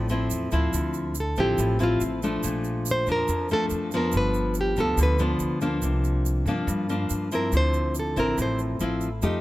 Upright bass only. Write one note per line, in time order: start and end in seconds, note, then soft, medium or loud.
0.00 0.27 A1 medium
0.31 0.50 E2 medium
0.53 0.71 D2 medium
0.73 1.33 D2 medium
1.37 1.57 A1 medium
1.58 1.98 A1 medium
2.01 2.40 A1 medium
2.44 3.03 A#1 medium
3.07 3.26 F2 medium
3.28 3.68 F2 medium
3.71 4.10 F2 medium
4.14 4.73 G1 medium
4.77 4.96 D2 medium
4.97 5.37 D2 medium
5.40 5.79 D2 medium
5.82 6.42 C2 medium
6.46 6.66 G2 medium
6.67 7.07 G2 loud
7.10 7.50 G2 medium
7.52 8.12 D2 medium
8.16 8.36 A1 medium
8.38 8.77 A1 medium
8.80 9.19 A1 medium
9.22 9.41 F2 medium